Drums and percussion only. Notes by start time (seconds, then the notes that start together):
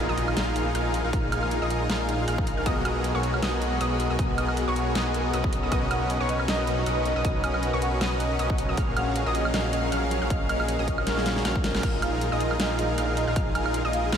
0.18 closed hi-hat
0.28 high woodblock
0.37 snare, closed hi-hat
0.56 closed hi-hat
0.75 closed hi-hat
0.94 closed hi-hat
1.13 kick, closed hi-hat
1.32 closed hi-hat, high woodblock
1.43 high woodblock
1.51 closed hi-hat
1.70 closed hi-hat
1.90 snare, closed hi-hat
2.09 closed hi-hat
2.28 closed hi-hat
2.38 kick
2.47 closed hi-hat
2.66 kick, closed hi-hat
2.85 closed hi-hat, high woodblock
3.04 closed hi-hat
3.23 closed hi-hat
3.34 high woodblock
3.42 snare, closed hi-hat
3.62 closed hi-hat
3.81 closed hi-hat
4.00 closed hi-hat
4.19 kick, closed hi-hat
4.38 closed hi-hat, high woodblock
4.48 high woodblock
4.57 closed hi-hat
4.76 closed hi-hat
4.95 snare, closed hi-hat
5.14 closed hi-hat
5.33 closed hi-hat
5.44 kick
5.53 closed hi-hat
5.72 kick, closed hi-hat
5.91 closed hi-hat, high woodblock
6.10 closed hi-hat
6.29 closed hi-hat
6.40 high woodblock
6.48 snare, closed hi-hat
6.67 closed hi-hat
6.86 closed hi-hat
7.06 closed hi-hat
7.25 kick, closed hi-hat
7.44 closed hi-hat, high woodblock
7.54 high woodblock
7.63 closed hi-hat
7.82 closed hi-hat
8.01 snare, closed hi-hat
8.20 closed hi-hat
8.39 closed hi-hat
8.50 kick
8.58 closed hi-hat
8.77 kick, closed hi-hat
8.97 closed hi-hat, high woodblock
9.16 closed hi-hat
9.35 closed hi-hat
9.45 high woodblock
9.54 snare, closed hi-hat
9.73 closed hi-hat
9.92 closed hi-hat
10.11 closed hi-hat
10.30 kick, closed hi-hat
10.49 closed hi-hat, high woodblock
10.60 high woodblock
10.69 closed hi-hat
10.88 kick, closed hi-hat
10.98 high woodblock
11.07 snare, closed hi-hat
11.17 snare
11.26 snare, closed hi-hat
11.36 snare
11.45 snare, closed hi-hat
11.56 kick
11.64 snare, closed hi-hat
11.75 snare
11.83 kick, closed hi-hat, crash
12.02 closed hi-hat, high woodblock
12.21 closed hi-hat
12.40 closed hi-hat
12.51 high woodblock
12.60 snare, closed hi-hat
12.79 closed hi-hat
12.98 closed hi-hat
13.17 closed hi-hat
13.36 kick, closed hi-hat
13.55 closed hi-hat, high woodblock
13.66 high woodblock
13.74 closed hi-hat
13.93 closed hi-hat
14.12 snare, closed hi-hat